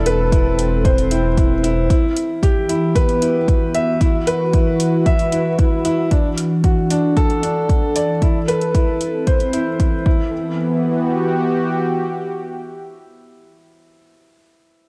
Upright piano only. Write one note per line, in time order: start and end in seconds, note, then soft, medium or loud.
0.06 0.21 B4 medium
0.32 0.57 E4 medium
0.85 1.10 C5 medium
1.11 1.26 E4 medium
1.37 1.52 E4 medium
1.64 1.88 E4 medium
1.90 2.05 E4 medium
2.43 2.68 G4 medium
2.69 2.94 E4 medium
2.95 3.20 B4 medium
3.22 3.37 E4 medium
3.75 3.89 E5 medium
4.01 4.16 E4 medium
4.27 4.42 B4 medium
4.53 4.78 E4 medium
5.06 5.31 E5 medium
5.32 5.47 E4 medium
5.58 5.73 E4 medium
5.85 6.10 E4 medium
6.11 6.26 D4 medium
6.64 6.89 F#4 medium
6.91 7.15 D4 medium
7.17 7.42 A4 medium
7.43 7.58 D4 medium
7.96 8.11 D5 medium
8.22 8.37 E4 medium
8.48 8.63 B4 medium
8.74 8.99 E4 medium
9.27 9.52 C5 medium
9.53 9.68 E4 medium
9.80 9.95 E4 medium
10.06 10.55 E4 medium